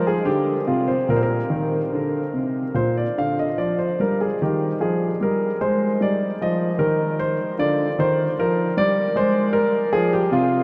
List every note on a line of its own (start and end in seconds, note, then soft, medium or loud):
0.00 0.14 F3 medium
0.00 0.66 F4 soft
0.07 0.27 G#4 medium
0.25 0.55 D3 medium
0.25 0.60 G4 medium
0.67 0.97 C3 medium
0.67 0.88 F4 medium
0.88 1.09 C5 medium
1.09 1.39 A#2 medium
1.09 2.71 G4 soft
1.09 1.17 A#4 medium
1.16 1.24 C5 medium
1.23 2.75 A#4 medium
1.50 1.80 D#3 medium
1.92 2.22 D3 medium
2.34 2.63 C3 soft
2.74 3.04 A#2 soft
2.74 4.34 F4 soft
2.74 2.96 C5 medium
2.97 3.17 D5 medium
3.18 3.47 D3 soft
3.18 3.38 F5 medium
3.39 3.58 D#5 medium
3.58 3.87 F3 soft
3.58 3.78 D5 medium
3.79 3.98 C5 medium
4.00 4.28 G3 soft
4.00 4.20 A#4 medium
4.21 4.40 G#4 medium
4.42 4.70 D#3 medium
4.42 5.98 D#4 soft
4.42 4.75 G4 medium
4.80 5.09 F3 soft
4.80 5.15 G#4 medium
5.21 5.49 G3 medium
5.21 5.55 A#4 medium
5.61 5.89 G#3 medium
5.61 6.01 C5 medium
6.00 6.29 G3 soft
6.00 7.55 D#4 soft
6.00 6.35 D5 medium
6.41 6.70 F3 medium
6.41 6.75 D#5 medium
6.79 7.36 D#3 medium
6.79 7.19 A#4 medium
7.20 7.53 C5 medium
7.59 7.87 D3 medium
7.59 10.31 F4 soft
7.59 7.98 D5 medium
7.99 8.26 D#3 medium
7.99 8.32 C5 medium
8.39 8.66 F3 medium
8.39 8.72 A#4 medium
8.77 9.05 G3 medium
8.77 9.16 D5 medium
9.16 9.71 G#3 medium
9.16 9.54 C5 medium
9.53 9.92 A#4 medium
9.93 10.21 F3 medium
9.93 10.12 G#4 medium
10.13 10.32 G4 medium
10.31 10.59 C3 medium
10.31 10.63 F4 medium